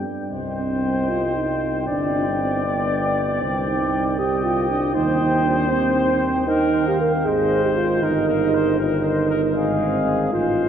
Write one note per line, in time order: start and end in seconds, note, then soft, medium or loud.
0.31 1.89 C2 soft
0.31 1.84 C5 medium
0.31 1.83 D#5 medium
0.31 1.83 G5 soft
0.58 1.10 C4 medium
1.09 1.37 F4 medium
1.35 1.87 D#4 medium
1.86 3.41 G1 medium
1.86 2.12 D4 medium
1.86 2.63 D5 medium
1.86 4.20 D5 medium
1.86 2.63 G5 medium
2.13 2.24 D4 medium
2.40 2.65 C4 medium
2.64 3.41 B3 medium
2.64 3.42 D5 medium
2.64 3.40 G5 medium
3.41 4.97 C2 medium
3.41 4.18 C5 medium
3.41 4.17 G5 medium
3.67 4.15 D#4 medium
4.18 4.45 G4 medium
4.18 4.94 C5 medium
4.18 4.96 D#5 medium
4.18 4.94 G5 medium
4.44 4.69 F4 medium
4.70 4.93 D4 medium
4.94 6.98 D#2 medium
4.94 5.20 D#4 medium
4.94 6.48 C5 medium
4.94 5.70 C5 medium
4.94 5.71 G5 medium
5.21 5.47 D#4 medium
5.46 5.70 D4 medium
5.71 6.47 C4 medium
5.71 6.49 C5 medium
5.71 6.47 G5 medium
6.47 6.86 D#4 medium
6.47 6.98 A#4 medium
6.47 6.89 G5 medium
6.88 7.00 G4 medium
6.88 7.28 F5 medium
7.01 7.12 A#4 medium
7.25 7.98 G#1 medium
7.25 7.63 G#4 medium
7.25 8.04 C5 medium
7.25 8.05 C5 medium
7.25 7.76 D#5 medium
7.65 7.71 G4 medium
7.76 8.04 F4 medium
8.02 9.57 G1 medium
8.02 8.79 D#4 medium
8.02 8.79 A#4 medium
8.02 8.28 A#4 medium
8.02 8.74 D#5 medium
8.29 8.56 A#4 medium
8.54 8.79 C5 medium
8.79 9.54 D#4 medium
8.79 9.56 A#4 medium
8.79 9.04 A#4 medium
8.79 9.57 D#5 medium
9.05 9.30 C5 medium
9.30 9.42 A#4 medium
9.55 10.32 G#1 medium
9.55 10.32 G#4 medium
9.55 10.32 D#5 medium
9.55 10.32 F5 medium
9.81 10.29 C4 medium
10.32 10.69 A1 medium
10.32 10.69 F4 medium
10.32 10.69 C5 medium
10.32 10.69 D#5 medium
10.32 10.69 F5 medium